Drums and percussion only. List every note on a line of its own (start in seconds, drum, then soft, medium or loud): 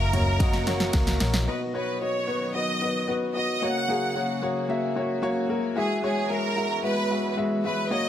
0.13 floor tom medium
0.13 ride medium
0.40 kick loud
0.40 snare medium
0.40 ride medium
0.53 snare medium
0.67 snare medium
0.67 ride soft
0.80 snare medium
0.93 kick loud
0.93 snare medium
0.93 ride medium
1.07 snare medium
1.07 ride soft
1.20 snare medium
1.20 ride medium
1.34 snare medium